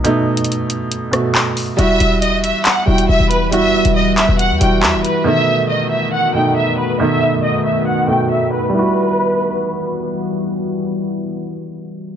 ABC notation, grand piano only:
X:1
M:4/4
L:1/8
Q:1/4=138
K:Em
V:1 name="Grand piano"
[B,,A,^D]4 z [B,,A,F]3 | [G,EF]4 z [G,EF]3 | [G,EF]4 z [G,EF]3 | [B,,^D,A,]4 z [B,,A,^D]3 |
[B,,^D,A,]4 z [B,,A,F]3 | [G,EF]8- | [G,EF]8 |]